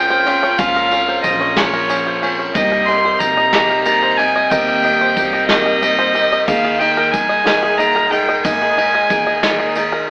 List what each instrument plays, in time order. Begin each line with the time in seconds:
Already playing: upright bass G1, brass ensemble C#3 A#3 F4, steel-string acoustic guitar F3 C4 C#4 F4, five-string banjo C#4 A#4, fiddle G5
0.10 five-string banjo C5, tambourine
0.26 steel-string acoustic guitar C4 C#4 F4, five-string banjo C#4, ride
0.43 five-string banjo C#5, tambourine
0.58 upright bass C#2, steel-string acoustic guitar A#2 F3 C#4 F4, five-string banjo C#4, fiddle F5, kick, ride, tambourine
0.75 five-string banjo A#4, tambourine
0.91 steel-string acoustic guitar C4 C#4 F4, five-string banjo C#4, ride, tambourine
1.08 five-string banjo C5
1.23 upright bass A#1, steel-string acoustic guitar F3 C4 C#4, fiddle D#5, kick, ride, tambourine
1.27 steel-string acoustic guitar F4
1.41 five-string banjo C#5
1.57 steel-string acoustic guitar A#2 F3 C#4 F4, five-string banjo C#4, fiddle C#5, snare, ride
1.74 five-string banjo A#4, tambourine
1.89 steel-string acoustic guitar F3 C#4 F4, five-string banjo C#4, ride, tambourine
2.07 five-string banjo C5
2.22 steel-string acoustic guitar C4 C#4 F4, five-string banjo C#4, ride
2.39 five-string banjo C#5, tambourine
2.54 upright bass C2, brass ensemble C3 G3 D#4, steel-string acoustic guitar C3 D#3 A#3 C4 G4, five-string banjo D#4, fiddle D#5, kick, ride, tambourine
2.72 five-string banjo A#4
2.86 steel-string acoustic guitar C4 G4, five-string banjo D#4, fiddle C6, ride
2.91 steel-string acoustic guitar A#3
3.05 five-string banjo C5
3.19 upright bass A#1, steel-string acoustic guitar D#3 A#3 C4 G4, fiddle A#5, kick, ride, tambourine
3.37 five-string banjo D#5
3.53 steel-string acoustic guitar C3 D#3 A#3 C4 G4, five-string banjo D#4, snare, ride
3.69 five-string banjo A#4, tambourine
3.84 steel-string acoustic guitar D#3 A#3 C4 G4, five-string banjo D#4, fiddle A#5, ride, tambourine
4.02 five-string banjo C5, tambourine
4.17 steel-string acoustic guitar A#3 C4, five-string banjo D#4, fiddle G#5, ride
4.35 five-string banjo D#5, tambourine
4.49 upright bass D#2, steel-string acoustic guitar C3 D#3 A#3 C4 G4, five-string banjo D#4, fiddle G5, kick, ride, tambourine
4.68 five-string banjo A#4
4.83 steel-string acoustic guitar A#3 C4 G4, five-string banjo D#4, ride
5.01 five-string banjo C5
5.15 upright bass C2, steel-string acoustic guitar D#3 A#3 C4 G4, kick, ride, tambourine
5.33 five-string banjo D#5, tambourine
5.48 steel-string acoustic guitar C3 D#3 A#3 C4 G4, five-string banjo D#4, fiddle D#5, snare, ride
5.66 five-string banjo A#4, tambourine
5.81 steel-string acoustic guitar D#3 A#3 C4 G4, five-string banjo D#4, ride, tambourine
5.99 five-string banjo C5, tambourine
6.14 steel-string acoustic guitar A#3 C4 G4, five-string banjo D#4, ride
6.32 five-string banjo D#5, tambourine
6.47 upright bass D#2, brass ensemble A#2 D#3 G#3, steel-string acoustic guitar D#3 A#3 D#4 G#4, five-string banjo D#4, fiddle F5, kick, ride, tambourine
6.65 five-string banjo G#4
6.79 steel-string acoustic guitar A#3 D#4 G#4, five-string banjo D#4, fiddle G5, ride
6.97 five-string banjo A#4
7.11 upright bass C2, steel-string acoustic guitar D#3 A#3 D#4 G#4, fiddle G#5, kick, ride, tambourine
7.29 five-string banjo D#5, tambourine
7.44 steel-string acoustic guitar D#3 A#3 D#4 G#4, five-string banjo D#4, snare, ride
7.63 five-string banjo G#4, tambourine
7.77 steel-string acoustic guitar D#3 A#3 D#4 G#4, five-string banjo D#4, fiddle A#5, ride, tambourine
7.96 five-string banjo A#4, tambourine
8.10 steel-string acoustic guitar A#3 D#4 G#4, five-string banjo D#4, fiddle G5, ride
8.29 five-string banjo D#5, tambourine
8.43 upright bass G#2, steel-string acoustic guitar D#3 A#3 D#4 G#4, five-string banjo D#4, fiddle G#5, kick, ride, tambourine
8.62 five-string banjo G#4
8.76 steel-string acoustic guitar A#3 D#4 G#4, five-string banjo D#4, ride
8.94 five-string banjo A#4
9.08 upright bass D#2, steel-string acoustic guitar D#3 A#3 D#4 G#4, kick, ride, tambourine
9.27 five-string banjo D#5
9.43 steel-string acoustic guitar D#3 A#3 D#4 G#4, five-string banjo D#4, snare, ride
9.59 five-string banjo G#4
9.75 steel-string acoustic guitar D#3 A#3 D#4 G#4, five-string banjo D#4, ride, tambourine
9.92 five-string banjo A#4